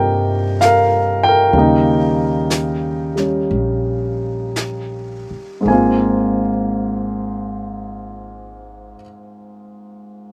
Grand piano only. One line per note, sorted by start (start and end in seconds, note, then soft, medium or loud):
0.00 1.54 C3 soft
0.00 1.55 G3 soft
0.00 1.55 A#3 soft
0.00 1.55 C4 soft
0.00 1.55 D#4 soft
0.00 0.58 A#4 medium
0.00 0.64 G5 medium
0.61 1.22 A#4 medium
0.61 1.20 F5 medium
1.23 4.52 G5 medium
1.28 4.55 A#4 medium
1.53 5.67 C#3 soft
1.53 3.14 G3 soft
1.53 5.65 A#3 soft
1.58 5.69 D#4 soft
3.16 5.66 G3 soft
3.16 5.68 C#4 soft
5.61 8.93 G#2 soft
5.61 8.95 G#3 soft
5.67 8.99 A#3 soft
5.67 9.02 C4 soft
5.67 8.96 G#5 medium
5.72 9.04 F4 medium